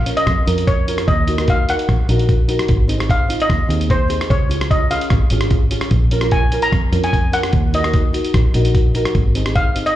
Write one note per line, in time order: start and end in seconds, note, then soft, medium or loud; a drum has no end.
0.00 0.12 A#1 medium
0.00 0.19 F5 medium
0.06 0.31 C#4 medium
0.06 0.31 F4 soft
0.06 0.32 A#4 medium
0.06 closed hi-hat medium
0.17 0.69 D#5 medium
0.17 closed hi-hat medium
0.26 0.35 F2 medium
0.26 kick medium
0.26 cross-stick medium
0.26 closed hi-hat medium
0.46 0.97 F2 medium
0.46 0.71 C#4 medium
0.46 0.72 F4 medium
0.46 0.72 A#4 medium
0.46 closed hi-hat medium
0.58 closed hi-hat medium
0.67 1.09 C#5 medium
0.67 kick medium
0.67 closed hi-hat medium
0.87 1.08 C#4 medium
0.87 1.08 F4 medium
0.87 1.09 A#4 medium
0.87 closed hi-hat medium
0.98 cross-stick medium
0.98 closed hi-hat medium
1.08 1.74 D#2 medium
1.08 1.45 D#5 medium
1.08 kick medium
1.08 closed hi-hat soft
1.27 1.34 D#4 medium
1.27 1.34 F#4 medium
1.27 1.35 A#4 medium
1.27 closed hi-hat medium
1.38 1.56 D#4 medium
1.38 1.57 F#4 medium
1.38 1.57 A#4 medium
1.38 cross-stick medium
1.38 closed hi-hat medium
1.48 1.70 F5 medium
1.48 kick medium
1.48 closed hi-hat medium
1.68 1.93 D#4 medium
1.68 1.93 F#4 soft
1.68 1.93 A#4 medium
1.68 2.07 F#5 medium
1.68 closed hi-hat medium
1.79 closed hi-hat soft
1.88 1.97 A#1 medium
1.88 kick medium
1.88 cross-stick medium
1.88 closed hi-hat soft
2.08 2.58 A#1 medium
2.08 2.33 D#4 medium
2.08 2.34 F#4 medium
2.08 2.34 A#4 medium
2.08 closed hi-hat medium
2.19 closed hi-hat medium
2.29 kick medium
2.29 closed hi-hat medium
2.48 2.69 D#4 medium
2.48 2.69 F#4 medium
2.48 2.69 A#4 medium
2.48 closed hi-hat medium
2.59 cross-stick medium
2.59 closed hi-hat medium
2.68 3.35 G#1 medium
2.68 kick medium
2.68 closed hi-hat soft
2.88 2.95 C4 medium
2.88 2.95 D#4 medium
2.88 2.96 G#4 medium
2.88 closed hi-hat medium
2.98 3.17 C4 medium
2.98 3.18 D#4 medium
2.98 3.18 G#4 medium
2.98 cross-stick medium
2.98 closed hi-hat medium
3.10 3.42 F5 medium
3.10 kick medium
3.10 closed hi-hat medium
3.28 3.54 C4 medium
3.28 3.54 D#4 medium
3.28 3.54 F4 medium
3.28 closed hi-hat medium
3.40 3.92 D#5 medium
3.40 closed hi-hat medium
3.49 3.58 D#2 medium
3.49 kick medium
3.49 cross-stick medium
3.49 closed hi-hat medium
3.69 4.19 D#2 medium
3.69 3.94 C4 medium
3.69 3.94 D#4 medium
3.69 3.95 G#4 medium
3.69 closed hi-hat medium
3.81 closed hi-hat medium
3.90 4.32 C5 medium
3.90 kick medium
3.90 closed hi-hat medium
4.08 4.29 C4 medium
4.08 4.30 D#4 medium
4.08 4.30 G#4 medium
4.08 closed hi-hat medium
4.21 cross-stick medium
4.21 closed hi-hat medium
4.30 4.96 C#2 medium
4.30 4.72 C#5 medium
4.30 kick medium
4.30 closed hi-hat medium
4.49 4.56 C#4 medium
4.49 4.56 F4 medium
4.49 4.57 G#4 medium
4.49 closed hi-hat medium
4.61 4.79 C#4 medium
4.61 4.79 F4 medium
4.61 4.80 G#4 medium
4.61 cross-stick medium
4.61 closed hi-hat medium
4.71 4.92 D#5 medium
4.71 kick medium
4.71 closed hi-hat medium
4.90 5.15 C#4 medium
4.90 5.16 F4 soft
4.90 5.16 G#4 medium
4.90 5.29 F5 medium
4.90 closed hi-hat medium
5.01 closed hi-hat medium
5.10 5.20 G#1 medium
5.10 kick medium
5.10 cross-stick medium
5.10 closed hi-hat medium
5.30 5.81 G#1 medium
5.30 5.56 C#4 medium
5.30 5.56 F4 medium
5.30 5.57 G#4 medium
5.30 closed hi-hat medium
5.41 cross-stick medium
5.41 closed hi-hat medium
5.50 kick medium
5.50 closed hi-hat soft
5.71 5.92 C#4 medium
5.71 5.92 F4 medium
5.71 5.92 G#4 medium
5.71 closed hi-hat medium
5.81 cross-stick medium
5.81 closed hi-hat medium
5.91 6.57 A#1 medium
5.91 kick medium
5.91 closed hi-hat medium
6.11 6.18 C#4 medium
6.11 6.19 F4 medium
6.11 6.19 A#4 medium
6.11 closed hi-hat medium
6.21 6.40 C#4 medium
6.21 6.41 F4 medium
6.21 6.41 A#4 medium
6.21 cross-stick medium
6.21 closed hi-hat soft
6.31 6.64 G#5 medium
6.31 kick medium
6.31 closed hi-hat medium
6.52 6.77 C#4 medium
6.52 6.77 F4 medium
6.52 6.78 A#4 medium
6.52 closed hi-hat medium
6.62 7.05 A#5 medium
6.62 closed hi-hat medium
6.72 6.81 F2 medium
6.72 kick medium
6.72 cross-stick medium
6.72 closed hi-hat medium
6.92 7.42 F2 medium
6.92 7.17 C#4 medium
6.92 7.17 F4 medium
6.92 7.17 A#4 medium
6.92 closed hi-hat medium
7.04 7.32 G#5 medium
7.04 closed hi-hat medium
7.13 kick medium
7.13 closed hi-hat soft
7.32 7.53 C#4 medium
7.32 7.54 F4 medium
7.32 7.54 A#4 medium
7.32 7.75 F#5 medium
7.32 closed hi-hat medium
7.43 cross-stick medium
7.43 closed hi-hat medium
7.53 8.19 D#2 medium
7.53 kick loud
7.53 closed hi-hat medium
7.73 7.80 D#4 medium
7.73 7.80 F#4 medium
7.73 7.80 A#4 medium
7.73 8.51 D#5 medium
7.73 closed hi-hat medium
7.83 8.02 D#4 medium
7.83 8.02 F#4 medium
7.83 8.03 A#4 medium
7.83 cross-stick medium
7.83 closed hi-hat medium
7.93 kick medium
7.93 closed hi-hat medium
8.13 8.38 D#4 medium
8.13 8.38 F#4 medium
8.13 8.39 A#4 medium
8.13 closed hi-hat medium
8.25 closed hi-hat medium
8.34 8.43 A#1 medium
8.34 kick loud
8.34 cross-stick medium
8.34 closed hi-hat medium
8.54 9.04 A#1 medium
8.54 8.79 D#4 medium
8.54 8.79 F#4 medium
8.54 8.79 A#4 medium
8.54 closed hi-hat medium
8.65 closed hi-hat medium
8.75 kick medium
8.75 closed hi-hat medium
8.94 9.15 D#4 medium
8.94 9.15 F#4 medium
8.94 9.16 A#4 medium
8.94 closed hi-hat medium
9.05 cross-stick medium
9.05 closed hi-hat medium
9.15 9.81 G#1 medium
9.15 kick medium
9.15 closed hi-hat soft
9.35 9.42 C4 medium
9.35 9.42 D#4 medium
9.35 9.42 G#4 medium
9.35 closed hi-hat medium
9.46 9.64 C4 medium
9.46 9.64 D#4 medium
9.46 9.65 G#4 medium
9.46 cross-stick medium
9.46 closed hi-hat soft
9.55 9.87 F5 medium
9.55 kick medium
9.55 closed hi-hat soft
9.75 9.96 C4 medium
9.75 9.96 D#4 medium
9.75 9.96 G#4 medium
9.75 closed hi-hat medium
9.86 9.96 D#5 medium
9.86 closed hi-hat medium